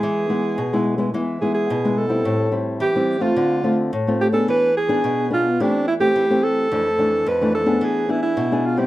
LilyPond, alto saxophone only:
\new Staff \with { instrumentName = "Alto saxophone" } { \time 4/4 \key e \phrygian \tempo 4 = 108 gis'2 r8 gis'16 gis'8. a'8~ | a'8 r8 g'8. f'4 r8. g'16 a'16 | b'8 gis'4 f'8 d'8 e'16 g'8. a'8~ | a'4 b'8 a'8 gis'8 e'16 e'8. f'16 g'16 | }